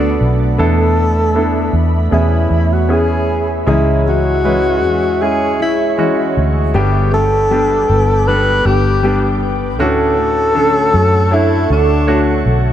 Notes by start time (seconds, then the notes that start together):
Already playing: D2 A3 B3 D4 F#4 A4 D5 F#5 B5
0.21 B1
0.58 E2 B2 B3 D4 E4 A4 E5 B5
1.35 B3 D4 E4 A4
1.73 E2
2.11 E2 B2 B3 C#4 E4 G#4 C#5 E5
2.51 E2
2.73 F#4
2.89 B3 C#4 E4 G#4
2.94 G#4
3.66 C#2 G#2 C#3 E3 G#3 C#4 E4 G#4 C#5 C#6
4.06 G#3 C#4 E4 F#4
4.44 E3 G#3 C#4 E4 B4
4.83 E2 G#3 C#4 E4
5.22 G#3 C#4 E4 G#4
5.59 C#2 G#3 C#4 E4
5.98 E3 G#3 C#4 E4 F#4
6.37 D2
6.72 G1 G2 D3 G3 B3 D4 G4 B4 G5 D6
7.12 G3 B3 D4 G4 A4
7.49 G3 B3 D4 G4
7.89 G1 G3 B3 D4 G4
8.28 G3 B3 D4 A4 B4
8.65 G1 G3 B3 D4 G4
9.03 G3 B3 D4 G4
9.79 D2 A2 D3 A3 C#4 D4 F#4 A4 F#5 C#6
10.17 A3 C#4 F#4
10.54 D3 A3 C#4 D4 F#4 A4
10.93 F#2 A3 C#4 F#4
11.31 A3 D4 E4 C#5
11.69 D2 A3 D4 F#4
12.07 D3 A3 D4 F#4 C#5
12.46 B1